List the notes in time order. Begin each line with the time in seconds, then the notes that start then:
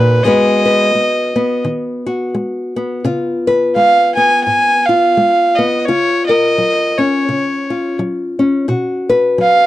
Already playing: A#2 D#4 F#4 B4
0.22 G#2 G#3 B3 F#4 D#5
0.27 B4
0.66 B4
0.95 G#3
1.36 B3
1.65 D#3
2.06 F#4
2.35 G#3
2.76 B3
3.05 C#3 F4
3.47 B4
3.75 G#3 F5
4.15 B3 G#5
4.44 G#2 G#5
4.86 F4 F5
5.17 G#3
5.55 B3 D#5
5.79 D#5
5.85 C#3 F4 C#5
6.26 A#4 D#5
6.58 F#3
6.98 C#4 C#5
7.29 C#3
7.70 F4
7.99 F#3
8.39 C#4
8.68 B2 F#4
9.10 B4
9.38 F#3 F5